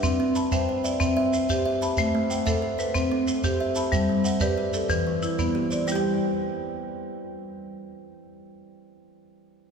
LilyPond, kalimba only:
\new Staff \with { instrumentName = "Kalimba" } { \time 12/8 \key g \major \tempo 4. = 123 << { <g' e''>4 a''8 g''4 e''8 e''4. c''4 a''8 | c''4 fis''8 e''4 c''8 c''4 r8 c''4 a''8 | c''4 e''8 d''4 b'8 b'4 r8 e'4 c''8 | e'4 r1 r4 |
r1. | } \\ { r8 c'4 r8 c''4 r8 e''4 r8 e''4 | r8 a4 r8 a'4 r8 c'4 r8 e''4 | r8 g4 r8 g'4 r8 e4 r8 g'4 | <g g' g''>1.~ |
<g g' g''>1. | } >> }